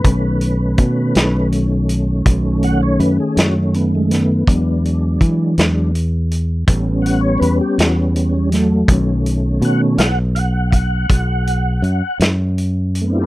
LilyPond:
<<
  \new Staff \with { instrumentName = "Tonewheel organ" } { \time 12/8 \key b \dorian \tempo 4. = 54 b'2 r4. fis''16 cis''16 b'16 gis'16 fis'16 cis'16 b16 gis16 b8~ | b8 r2. fis''16 cis''16 b'16 g'16 fis'16 cis'16 r16 g16 <fis a>8~ | <fis a>8 r8 fis''16 r16 <f'' fis''>16 r16 <f'' fis''>8 <f'' fis''>2 r4. | }
  \new Staff \with { instrumentName = "Tonewheel organ" } { \time 12/8 \key b \dorian <dis a cis'>1. | <fis gis d'>4. <fis gis d'>8 r4 <g b cis'>2 <g b cis'>8 r8 | <dis a cis'>4. r1 r8 | }
  \new Staff \with { instrumentName = "Fingered electric bass" } { \clef bass \time 12/8 \key b \dorian b,,4 b,8 b,,4. b,,4 fis,16 r16 fis,4. | e,4 e8 e,4. a,,4 e,16 r16 e,4. | b,,4 b,8 b,,4. b,,4 fis,16 r16 fis,4. | }
  \new DrumStaff \with { instrumentName = "Drums" } \drummode { \time 12/8 <hh bd>8 hh8 <hh bd>8 <hh sn>8 hh8 hh8 <hh bd>8 hh8 hh8 <hh sn>8 hh8 <hh sn>8 | <hh bd>8 hh8 <hh bd>8 <hh sn>8 hh8 hh8 <hh bd>8 hh8 hh8 <hh sn>8 hh8 <hh sn>8 | <hh bd>8 hh8 hh8 <hh sn>8 hh8 <hh bd>8 <hh bd>8 hh8 hh8 <hh sn>8 hh8 hh8 | }
>>